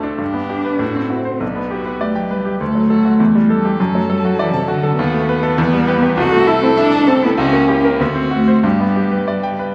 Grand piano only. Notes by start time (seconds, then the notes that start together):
Already playing: D2 A3 D4 A4
0.03 D4
0.18 G2
0.34 B3
0.49 G4
0.65 B4
0.79 A2
0.95 C4
1.10 F#4
1.25 C5
1.40 B1
1.56 B3
1.71 G4
1.85 B4
2.01 D5
2.16 G5
2.31 B4
2.45 G4
2.61 D2
2.75 F#3
2.90 A4
3.05 F#4
3.20 E2
3.35 G3
3.50 A4
3.65 G4
3.80 F#2
3.95 F#3
4.10 A4
4.25 F#4
4.39 D5
4.54 A5
4.68 F#4
4.83 A4
4.99 D#2
5.14 A3
5.29 B4
5.43 A4
5.58 E2
5.73 G3
5.88 B4
6.03 G4
6.17 C2
6.32 A3
6.47 A4
6.63 E4
6.77 E5
6.92 A5
7.07 A4
7.23 E4
7.38 C#2
7.53 A#3
7.68 G4
7.85 A#4
8.00 D2
8.15 C4
8.31 F#4
8.48 C5
8.64 G2
8.80 B3
8.96 G4
9.11 B4
9.28 D5
9.43 G5
9.59 B4